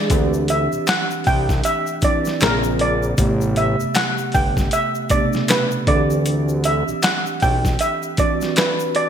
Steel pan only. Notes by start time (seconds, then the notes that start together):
Already playing: D5
0.50 E5
0.89 F#5
1.27 G5
1.65 E5
2.04 D5
2.43 A#4
2.81 D5
3.57 E5
3.96 F#5
4.34 G5
4.73 E5
5.11 D5
5.50 B4
5.88 D5
6.65 E5
7.04 F#5
7.42 G5
7.81 E5
8.20 D5
8.58 B4
8.96 D5